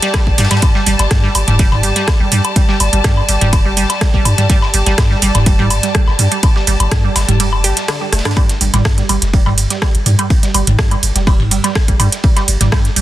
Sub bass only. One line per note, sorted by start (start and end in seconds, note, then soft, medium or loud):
0.27 0.35 G1 medium
0.38 0.47 G2 loud
0.87 0.95 G1 loud
0.99 1.07 G1 loud
1.11 1.28 G2 medium
1.35 1.44 G1 medium
1.48 1.85 F1 loud
1.83 1.92 G1 loud
2.20 2.28 G1 medium
2.32 2.41 G2 medium
2.80 2.89 G1 loud
2.93 3.01 G1 loud
3.04 3.22 G2 medium
3.29 3.37 G1 medium
3.41 3.79 F1 loud
3.77 3.86 G1 medium
4.14 4.22 G1 medium
4.25 4.34 G2 loud
4.74 4.83 G1 loud
4.86 4.94 G1 loud
4.98 5.15 G2 medium
5.22 5.31 G1 medium
5.35 5.72 F1 loud
5.70 5.79 G1 medium
6.08 6.15 G1 medium
6.19 6.28 G2 loud
6.67 6.76 G1 loud
6.80 6.88 G1 medium
6.92 7.09 G2 medium
7.16 7.25 G1 medium
7.28 7.66 F1 loud
7.64 7.73 G1 medium
8.13 8.21 F1 loud
8.61 8.70 G1 loud
8.74 8.81 G1 medium
8.85 9.02 G2 medium
9.09 9.18 G1 medium
9.22 9.59 F1 loud
9.58 9.67 G1 loud
9.95 10.03 G1 medium
10.06 10.15 G2 loud
10.54 10.63 G1 medium
10.67 10.75 G1 loud
10.79 10.96 G2 medium
11.03 11.12 G1 medium
11.15 11.53 F1 loud
11.51 11.60 G1 medium
11.88 11.96 G1 medium
12.00 12.08 G2 loud
12.48 12.57 G1 medium
12.61 12.69 G1 loud
12.72 12.89 G2 medium
12.96 13.02 G1 medium